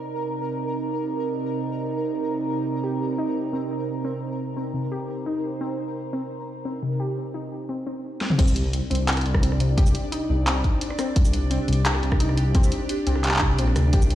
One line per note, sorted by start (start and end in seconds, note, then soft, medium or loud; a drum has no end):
0.00 7.00 C3 medium
0.00 7.00 C4 medium
0.00 7.00 D#4 medium
0.00 7.00 A#4 medium
0.00 4.53 D5 medium
0.00 7.00 A#5 medium
2.84 3.17 G4 medium
3.18 3.51 D#4 medium
3.53 3.63 C4 medium
4.05 4.55 C4 medium
4.43 7.00 C5 medium
4.57 4.74 C4 medium
4.74 4.90 C3 medium
4.92 5.25 G4 medium
5.26 5.59 D#4 medium
5.61 5.71 C4 medium
6.13 6.64 C4 medium
6.65 6.82 C4 medium
6.83 6.98 C3 medium
7.00 7.33 G4 medium
7.34 7.68 D#4 medium
7.69 7.79 C4 medium
7.87 8.03 C4 medium
8.21 8.31 C4 medium
8.21 snare medium
8.30 mid tom medium
8.38 8.81 C2 loud
8.38 8.49 C4 medium
8.38 14.15 D4 medium
8.38 11.18 D5 medium
8.38 kick loud
8.38 closed hi-hat medium
8.38 crash loud
8.48 shaker medium
8.56 closed hi-hat medium
8.73 closed hi-hat medium
8.90 9.25 C2 loud
8.90 9.41 C4 medium
8.90 closed hi-hat medium
8.95 closed hi-hat medium
9.08 clap loud
9.08 closed hi-hat medium
9.13 closed hi-hat medium
9.17 14.15 D5 medium
9.17 cross-stick medium
9.17 closed hi-hat medium
9.21 closed hi-hat soft
9.26 9.51 C2 medium
9.26 closed hi-hat soft
9.35 kick medium
9.35 cross-stick medium
9.42 9.59 C4 medium
9.42 closed hi-hat medium
9.52 9.94 C2 medium
9.52 cross-stick soft
9.60 9.76 C3 medium
9.60 closed hi-hat medium
9.77 10.10 G4 medium
9.77 kick loud
9.77 closed hi-hat medium
9.86 shaker medium
9.95 closed hi-hat medium
10.12 10.45 D#4 medium
10.12 closed hi-hat medium
10.30 10.63 C2 medium
10.47 10.57 C4 medium
10.47 clap loud
10.47 closed hi-hat medium
10.64 kick medium
10.64 closed hi-hat soft
10.81 closed hi-hat medium
10.90 cross-stick soft
10.99 11.49 C4 medium
10.99 cross-stick medium
10.99 closed hi-hat medium
10.99 shaker soft
11.16 11.59 C2 loud
11.16 13.95 G4 medium
11.16 kick loud
11.16 closed hi-hat medium
11.25 shaker medium
11.33 closed hi-hat medium
11.51 11.67 C4 medium
11.51 closed hi-hat medium
11.68 12.02 C2 loud
11.68 11.84 C3 medium
11.68 closed hi-hat medium
11.73 closed hi-hat medium
11.85 12.18 G4 medium
11.85 clap loud
11.85 closed hi-hat medium
11.94 cross-stick medium
12.03 12.28 C2 medium
12.03 closed hi-hat soft
12.12 kick medium
12.12 cross-stick medium
12.20 12.53 D#4 medium
12.20 closed hi-hat medium
12.29 12.71 C2 loud
12.29 cross-stick soft
12.37 closed hi-hat medium
12.55 12.65 C4 medium
12.55 kick loud
12.55 closed hi-hat medium
12.64 shaker medium
12.72 closed hi-hat medium
12.89 closed hi-hat medium
13.07 13.60 C2 loud
13.07 13.57 C4 medium
13.07 closed hi-hat medium
13.15 cross-stick soft
13.24 clap medium
13.24 closed hi-hat medium
13.26 clap medium
13.29 clap medium
13.32 clap medium
13.34 clap medium
13.37 clap loud
13.39 kick medium
13.39 clap loud
13.59 13.75 A#1 loud
13.59 13.75 C4 medium
13.59 closed hi-hat medium
13.67 cross-stick soft
13.76 13.92 D2 loud
13.76 13.92 C3 medium
13.76 cross-stick medium
13.76 closed hi-hat medium
13.76 shaker soft
13.93 14.15 C2 loud
13.93 14.15 G4 medium
13.93 14.15 D5 medium
13.93 kick loud
13.93 closed hi-hat medium
14.02 shaker medium
14.10 closed hi-hat medium